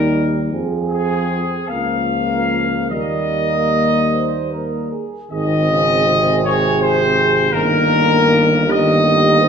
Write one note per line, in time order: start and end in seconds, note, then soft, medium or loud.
0.00 0.52 D#2 medium
0.00 0.52 G3 medium
0.00 0.35 D#4 medium
0.00 0.53 G4 medium
0.00 0.53 A#4 loud
0.52 1.53 F2 medium
0.52 1.53 F3 medium
0.52 1.71 C4 medium
0.52 1.50 G#4 medium
0.89 1.66 G#4 medium
1.67 2.93 C#2 medium
1.67 2.93 F3 medium
1.67 2.90 A#3 medium
1.67 2.87 A#4 medium
1.67 2.90 F5 medium
2.89 4.98 D#2 medium
2.89 4.97 G3 medium
2.89 4.93 A#3 medium
2.89 4.01 A#4 medium
2.89 4.88 D#5 loud
4.12 4.49 C5 medium
4.51 4.92 A#4 medium
4.91 5.30 G#4 medium
5.30 7.48 G#1 medium
5.30 5.72 D#3 medium
5.30 7.54 C4 medium
5.30 7.47 G#4 medium
5.30 6.39 D#5 loud
5.70 6.09 C#3 medium
6.07 7.54 C3 medium
6.45 6.81 C#5 loud
6.81 7.51 C5 loud
7.51 9.48 G1 medium
7.51 8.66 D#3 medium
7.51 8.67 A#3 medium
7.51 8.65 A#4 medium
7.51 8.68 A#4 loud
8.66 9.48 D#3 medium
8.66 9.48 A#3 medium
8.66 9.03 G4 medium
8.71 9.48 D#5 loud
9.05 9.40 G4 medium
9.40 9.48 C5 medium